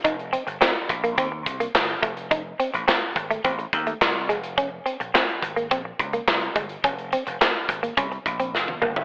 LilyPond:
<<
  \new Staff \with { instrumentName = "Clean electric guitar" } { \time 4/4 \key bes \dorian \tempo 4 = 106 ees'16 r16 c'16 r16 c'16 r8 bes16 c'16 r8 bes16 r8 a16 r16 | ees'16 r16 c'16 r16 c'16 r8 a16 c'16 r8 a16 r8 aes16 r16 | des'16 r16 c'16 r16 c'16 r8 bes16 c'16 r8 bes16 r8 aes16 r16 | des'16 r16 c'16 r16 c'16 r8 bes16 des'16 r8 c'16 r8 bes16 r16 | }
  \new Staff \with { instrumentName = "Slap bass" } { \clef bass \time 4/4 \key bes \dorian f,,8. g,,16 r8 bes,,8 ees,8 c,8 g,,8 f,,8~ | f,,8. a,,16 r8 aes,,8 a,,8 ees,8 c,8 f,,8~ | f,,8. bes,,16 r8 aes,,8 bes,,8 des,8 c,8 g,,8 | f,,8. f,,16 r8 aes,,8 c,8 bes,,8 f,,8 g,,8 | }
  \new DrumStaff \with { instrumentName = "Drums" } \drummode { \time 4/4 <hh bd>16 hh16 hh16 hh16 <hc sn>8 <hh bd>16 hh16 <hh bd>8 <hh bd>16 hh16 <hc sn>16 hh16 <hh bd>16 hh16 | <hh bd>8 hh16 hh16 <hc sn>8 <hh bd>16 hh16 <hh bd>16 hh16 <hh bd>16 hh16 <hc sn>8 hh16 hh16 | <hh bd>8 hh16 hh16 <hc sn>16 hh16 <hh bd>16 hh16 <hh bd>8 <hh bd>16 hh16 <hc sn>16 hh16 <hh bd>16 hh16 | <hh bd>16 hh16 hh16 hh16 <hc sn>8 <hh bd>16 hh16 <hh bd>16 hh16 <hh bd>16 hh16 sn16 tommh16 toml16 tomfh16 | }
>>